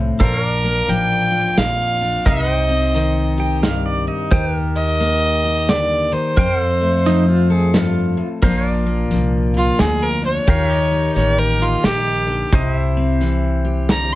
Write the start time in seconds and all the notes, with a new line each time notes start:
Already playing: C2 A2 F3 A3 C4 A4 C5 F5
0.20 A#1 A#2 D4 A4 A#4 C5 F5, kick, closed hi-hat
0.40 A#4
0.46 D5
0.64 A#3
0.88 A1 F3 G5, closed hi-hat
1.32 F4
1.57 A#1 F2 F5, snare, closed hi-hat
2.01 D4
2.26 C2 C3 D#4 A#4 D#5 F5, kick, closed hi-hat
2.51 C5 G5
2.69 C4
2.94 D#3, closed hi-hat
3.38 G4 G5
3.63 G2 F5, snare, closed hi-hat
3.86 D5
4.07 D#4 D#5
4.31 D#2 D#3 G4 C5 G5, kick, closed hi-hat
4.56 A#4
4.76 D#5
5.00 A#3, closed hi-hat
5.44 G4
5.69 D3 D5, snare, closed hi-hat
6.12 D#3 C5
6.37 F2 C4 A#4 C5 G5, kick, closed hi-hat
6.57 A4
6.64 F5
6.81 A3
7.06 F3 D#4, closed hi-hat
7.29 F4
7.50 G#4 A4
7.74 G2 F4, snare, closed hi-hat
8.17 A2
8.42 A#1 A#2 F3 A#3 D4 F4 A#4 C5 F5, kick, closed hi-hat
8.69 D5
8.86 A#3
9.11 C2 F3, closed hi-hat
9.54 F4
9.79 D2 F2 G#4, snare, closed hi-hat
10.02 A#4
10.22 D4 C#5
10.47 D#2 D#3 F4 G4 A#4 F5, kick, closed hi-hat
10.69 G4
10.75 D#5
10.91 D#4
11.16 A1 A#3 C#5, closed hi-hat
11.39 A#4
11.60 F4 G4
11.84 A#1 D#3 G4, snare, closed hi-hat
12.27 D3
12.52 C2 C3 E4 G4 C5 D#5, kick, closed hi-hat
12.75 E5
12.97 C4
13.21 E3, closed hi-hat
13.65 G4
13.89 D3 A#5, snare, closed hi-hat